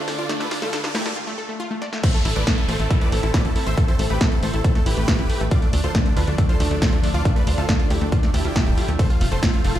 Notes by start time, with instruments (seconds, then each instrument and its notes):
Already playing: analog synth pad D3 D4 F4 A4, riser
0.08 supersaw synth D4, synth arpeggio sound A4, snare, open hi-hat
0.18 analog synth bass D2, supersaw synth F4 D5, synth arpeggio sound F4, closed hi-hat
0.29 synth arpeggio sound A3, supersaw synth D4, snare, closed hi-hat
0.40 supersaw synth D4 B4, synth arpeggio sound A4, snare, closed hi-hat
0.51 analog synth bass D2, supersaw synth D4, synth arpeggio sound F4, snare, open hi-hat
0.62 analog synth bass D2, synth arpeggio sound A3, supersaw synth F4 A4, snare
0.73 supersaw synth D4, synth arpeggio sound A4, snare, closed hi-hat
0.84 supersaw synth D4, synth arpeggio sound F4, snare, closed hi-hat
0.94 analog synth bass D2, synth arpeggio sound A3, supersaw synth E4 G4, snare, open hi-hat
1.05 analog synth bass D2, supersaw synth D4, synth arpeggio sound A4, snare
1.16 synth arpeggio sound F4
1.27 synth arpeggio sound A3
1.38 synth arpeggio sound A4
1.49 synth arpeggio sound A3
1.60 synth arpeggio sound F4
1.71 synth arpeggio sound A3
1.82 synth arpeggio sound D5, snare
1.93 synth arpeggio sound A3, snare
2.03 synth arpeggio sound A3, analog synth pad A3 C4 E4, supersaw synth C5 E5, kick, closed hi-hat, crash, downlifter
2.14 synth arpeggio sound A3, supersaw synth A4, closed hi-hat
2.25 analog synth bass A1, synth arpeggio sound E4, supersaw synth A4, open hi-hat
2.36 analog synth bass A1, synth arpeggio sound A3, supersaw synth B4 D5, closed hi-hat
2.47 synth arpeggio sound A3, supersaw synth A4, kick, snare, closed hi-hat
2.58 synth arpeggio sound E4, supersaw synth A4, closed hi-hat
2.68 analog synth bass A1, synth arpeggio sound A3, supersaw synth A4 C5, open hi-hat
2.79 analog synth bass A1, synth arpeggio sound A3, supersaw synth A4, closed hi-hat
2.90 synth arpeggio sound E4, supersaw synth A4, kick, closed hi-hat
3.01 synth arpeggio sound A3, supersaw synth B4 D5, closed hi-hat
3.12 analog synth bass A1, synth arpeggio sound A3, supersaw synth A4, open hi-hat
3.23 analog synth bass A1, synth arpeggio sound E4, supersaw synth A4, closed hi-hat
3.34 synth arpeggio sound A3, supersaw synth B4 D5, kick, snare, closed hi-hat
3.45 analog synth bass A1, synth arpeggio sound A3, supersaw synth A4, closed hi-hat
3.56 synth arpeggio sound E4, supersaw synth A4, open hi-hat
3.66 analog synth bass A1, synth arpeggio sound A3, supersaw synth C5 E5, closed hi-hat
3.77 synth arpeggio sound A3, supersaw synth A4, kick, closed hi-hat
3.88 synth arpeggio sound E4, supersaw synth A4 C5, closed hi-hat
3.99 analog synth bass A1, synth arpeggio sound A3, supersaw synth A4, open hi-hat
4.10 analog synth bass A1, synth arpeggio sound A3, supersaw synth G4 B4, closed hi-hat
4.21 synth arpeggio sound E4, supersaw synth A4, kick, snare, closed hi-hat
4.32 synth arpeggio sound A3, supersaw synth A4, closed hi-hat
4.43 analog synth bass A1, synth arpeggio sound A3, supersaw synth A4 C5, open hi-hat
4.54 analog synth bass A1, synth arpeggio sound E4, supersaw synth A4, closed hi-hat
4.64 synth arpeggio sound A3, supersaw synth A4, kick, closed hi-hat
4.75 synth arpeggio sound A3, supersaw synth A4, snare, closed hi-hat
4.86 analog synth bass A1, synth arpeggio sound E4, supersaw synth G4 B4, open hi-hat
4.97 analog synth bass A1, synth arpeggio sound A3, closed hi-hat
5.08 synth arpeggio sound A3, kick, snare, closed hi-hat
5.19 analog synth bass A1, synth arpeggio sound E4, closed hi-hat
5.30 synth arpeggio sound A3, open hi-hat
5.41 analog synth bass A1, synth arpeggio sound A3, closed hi-hat
5.51 analog synth pad D3 F3 D4 A4, synth arpeggio sound F4, supersaw synth F4 D5, kick, closed hi-hat
5.62 synth arpeggio sound A3, supersaw synth D4, closed hi-hat
5.73 analog synth bass D2, synth arpeggio sound A3, supersaw synth D4, open hi-hat
5.84 analog synth bass D2, synth arpeggio sound F4, supersaw synth A4 C5, closed hi-hat
5.95 synth arpeggio sound A3, supersaw synth D4, kick, snare, closed hi-hat
6.05 synth arpeggio sound A3, supersaw synth D4, closed hi-hat
6.16 analog synth bass D2, supersaw synth D4 B4, synth arpeggio sound F4, open hi-hat
6.27 analog synth bass D2, synth arpeggio sound A3, supersaw synth D4, closed hi-hat
6.38 synth arpeggio sound A3, supersaw synth D4, kick, closed hi-hat
6.49 synth arpeggio sound F4, supersaw synth A4 C5, closed hi-hat
6.60 analog synth bass D2, synth arpeggio sound A3, supersaw synth D4, open hi-hat
6.71 analog synth bass D2, synth arpeggio sound A3, supersaw synth D4, closed hi-hat
6.82 synth arpeggio sound F4, supersaw synth A4 C5, kick, snare, closed hi-hat
6.93 analog synth bass D2, synth arpeggio sound A3, supersaw synth D4, closed hi-hat
7.03 synth arpeggio sound A3, supersaw synth D4, open hi-hat
7.14 analog synth bass D2, supersaw synth F4 D5, synth arpeggio sound F4, closed hi-hat
7.25 synth arpeggio sound A3, supersaw synth D4, kick, closed hi-hat
7.36 synth arpeggio sound A3, supersaw synth D4 B4, closed hi-hat
7.47 analog synth bass D2, supersaw synth D4, synth arpeggio sound F4, open hi-hat
7.58 analog synth bass D2, synth arpeggio sound A3, supersaw synth F4 A4, closed hi-hat
7.69 synth arpeggio sound A3, supersaw synth D4, kick, snare, closed hi-hat
7.79 supersaw synth D4, synth arpeggio sound F4, closed hi-hat
7.90 analog synth bass D2, synth arpeggio sound A3, supersaw synth E4 G4, open hi-hat
8.01 analog synth bass D2, synth arpeggio sound A3, supersaw synth D4, closed hi-hat
8.12 supersaw synth D4, synth arpeggio sound F4, kick, closed hi-hat
8.23 synth arpeggio sound A3, supersaw synth D4, snare, closed hi-hat
8.34 analog synth bass D2, synth arpeggio sound A3, supersaw synth E4 G4, open hi-hat
8.45 analog synth bass D2, synth arpeggio sound F4, closed hi-hat
8.56 synth arpeggio sound A3, kick, snare, closed hi-hat
8.67 analog synth bass D1, synth arpeggio sound A3, closed hi-hat
8.78 synth arpeggio sound F4, open hi-hat
8.88 analog synth bass D2, synth arpeggio sound A3, closed hi-hat
8.99 analog synth pad F3 A3 C4, synth arpeggio sound A3, supersaw synth A4 C5, kick, closed hi-hat, ride
9.10 supersaw synth F4, synth arpeggio sound F4, closed hi-hat
9.21 analog synth bass F1, synth arpeggio sound A3, supersaw synth F4, open hi-hat
9.32 analog synth bass F1, synth arpeggio sound A3, supersaw synth A4 C5, closed hi-hat
9.43 supersaw synth F4, synth arpeggio sound F4, kick, snare, closed hi-hat, ride
9.53 synth arpeggio sound A3, supersaw synth F4, closed hi-hat
9.64 analog synth bass F1, synth arpeggio sound A3, supersaw synth F4 A4, open hi-hat
9.75 analog synth bass F1, supersaw synth F4, synth arpeggio sound F4, closed hi-hat